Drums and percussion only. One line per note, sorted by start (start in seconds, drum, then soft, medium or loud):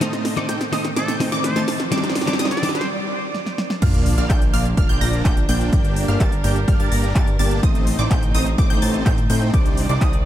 0.01 snare medium
0.01 closed hi-hat medium
0.13 snare medium
0.13 closed hi-hat soft
0.25 snare loud
0.25 open hi-hat loud
0.37 snare medium
0.37 closed hi-hat soft
0.49 snare medium
0.49 closed hi-hat loud
0.61 snare medium
0.61 closed hi-hat soft
0.73 snare loud
0.73 open hi-hat loud
0.85 snare medium
0.85 closed hi-hat soft
0.96 snare loud
0.96 closed hi-hat medium
1.08 snare medium
1.08 closed hi-hat soft
1.20 snare loud
1.20 open hi-hat loud
1.32 snare medium
1.32 closed hi-hat soft
1.44 snare loud
1.44 closed hi-hat loud
1.56 snare medium
1.56 closed hi-hat soft
1.68 snare loud
1.68 open hi-hat loud
1.80 snare medium
1.80 closed hi-hat soft
1.92 snare loud
1.92 closed hi-hat loud
1.98 snare medium
2.04 snare medium
2.04 closed hi-hat soft
2.10 snare medium
2.15 snare loud
2.15 open hi-hat loud
2.21 snare medium
2.27 snare medium
2.27 closed hi-hat soft
2.33 snare medium
2.39 snare loud
2.39 closed hi-hat loud
2.45 snare medium
2.51 snare medium
2.51 closed hi-hat soft
2.57 snare medium
2.63 snare loud
2.63 open hi-hat loud
2.69 snare medium
2.75 snare loud
2.75 closed hi-hat soft
2.81 snare loud
3.34 snare medium
3.46 snare medium
3.58 snare medium
3.70 snare medium
3.82 kick loud
3.82 closed hi-hat medium
3.82 crash loud
3.94 closed hi-hat soft
4.06 open hi-hat loud
4.18 closed hi-hat soft
4.30 kick loud
4.30 clap loud
4.30 closed hi-hat medium
4.42 closed hi-hat soft
4.54 open hi-hat loud
4.65 closed hi-hat soft
4.77 kick loud
4.77 closed hi-hat medium
4.89 closed hi-hat soft
5.01 open hi-hat loud
5.13 closed hi-hat soft
5.25 kick loud
5.25 clap loud
5.25 closed hi-hat medium
5.37 closed hi-hat soft
5.49 open hi-hat loud
5.61 closed hi-hat soft
5.73 kick loud
5.73 closed hi-hat medium
5.85 closed hi-hat soft
5.96 open hi-hat loud
6.08 closed hi-hat soft
6.20 kick loud
6.20 clap loud
6.20 closed hi-hat medium
6.32 closed hi-hat soft
6.44 open hi-hat loud
6.56 closed hi-hat soft
6.68 kick loud
6.68 closed hi-hat medium
6.80 closed hi-hat soft
6.92 open hi-hat loud
7.04 closed hi-hat soft
7.15 kick loud
7.15 clap loud
7.15 closed hi-hat medium
7.27 closed hi-hat soft
7.39 open hi-hat loud
7.51 closed hi-hat soft
7.63 kick loud
7.63 closed hi-hat medium
7.75 closed hi-hat soft
7.87 open hi-hat loud
7.99 closed hi-hat soft
8.11 kick loud
8.11 clap loud
8.11 closed hi-hat medium
8.23 closed hi-hat soft
8.35 open hi-hat loud
8.46 closed hi-hat soft
8.58 kick loud
8.58 closed hi-hat medium
8.70 closed hi-hat soft
8.82 open hi-hat loud
8.94 closed hi-hat soft
9.06 kick loud
9.06 clap loud
9.06 closed hi-hat medium
9.18 closed hi-hat soft
9.30 open hi-hat loud
9.42 closed hi-hat soft
9.54 kick loud
9.54 closed hi-hat medium
9.66 closed hi-hat soft
9.77 open hi-hat loud
9.89 closed hi-hat soft
10.01 kick loud
10.01 clap loud
10.01 closed hi-hat medium
10.13 closed hi-hat soft